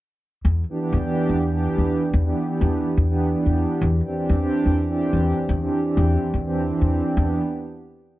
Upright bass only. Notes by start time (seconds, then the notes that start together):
0.45 E2
0.93 E2
1.29 E2
1.78 E2
2.14 E2
2.61 E2
2.97 E2
3.46 E2
3.81 E2
4.29 E2
4.66 E2
5.13 E2
5.49 E2
5.97 E2
6.34 E2
6.81 E2
7.17 E2